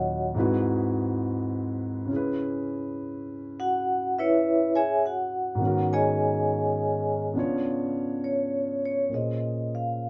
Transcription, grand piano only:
Already playing: D#2 A#2 F#3 C#4 F#4
0.34 G#2 G#3 C4 E4 F#4
0.39 B4
2.05 C#3 C#4
2.10 E4 G#4
2.16 B4
5.55 G#2 D#3
5.60 B3 C#4
5.65 F#4 A#4
7.34 C#3 B3 D4 F4
7.39 C#5
9.09 A#2 A#3 C#4
9.14 G#4 C5

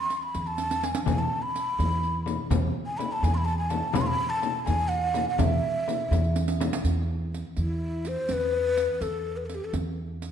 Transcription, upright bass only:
0.35 E2
1.07 E2
1.79 E2
2.50 E2
3.23 E2
3.95 E2
4.68 E2
5.39 E2
6.11 E2
6.84 E2
7.57 E2
8.29 E2
9.01 E2
9.73 E2

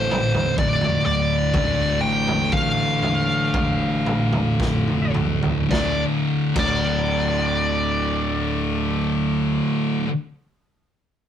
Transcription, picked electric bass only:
Already playing: A1
0.58 F1
1.05 D1
1.54 D1
2.02 A1
2.52 A1
3.54 A1
4.60 F1
5.15 D1
5.71 D1
6.56 D1

